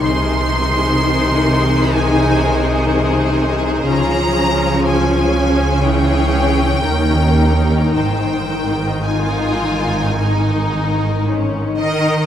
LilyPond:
<<
  \new Staff \with { instrumentName = "Violin section" } { \time 4/4 \key aes \major \tempo 4 = 60 c'''2 aes''4 r4 | bes''4 aes''4 g''2 | g''4 aes''2 r8 ees''8 | }
  \new Staff \with { instrumentName = "Violin section" } { \time 4/4 \key aes \major << { c''1~ | c''2 des''4 bes'4 | c''4 f'4 ees'4 des'8 ees''8 | } \\ { aes'1~ | aes'2 aes'4 ees'4~ | ees'4 r2. | } >> }
  \new Staff \with { instrumentName = "Harp" } { \time 4/4 \key aes \major <c ees'>16 c'16 aes16 ees'16 c''16 aes'16 ees'16 aes16 c16 c'16 aes16 ees'16 c''16 aes'16 ees'16 aes16 | des16 des'16 aes16 f'16 c''16 aes'16 f'16 aes16 des16 des'16 aes16 fes'16 ees16 bes16 des'16 ees'16 | aes,16 ees16 c'16 ees'16 c''16 ees'16 c'16 ees16 aes,16 c'16 ees16 ees'16 c''16 ees'16 c'16 ees16 | }
  \new Staff \with { instrumentName = "Viola section" } { \clef bass \time 4/4 \key aes \major << { ees'1 | des'1 | ees'1 | } \\ { ees1 | f2 fes4 ees4~ | ees1 | } >> }
  \new Staff \with { instrumentName = "Cello section" } { \clef bass \time 4/4 \key aes \major c1 | des2. ees,4 | aes,2.~ aes,8 ees8 | }
  \new Staff \with { instrumentName = "Double bass section" } { \clef bass \time 4/4 \key aes \major c,1 | des,2. ees,4 | aes,,1 | }
>>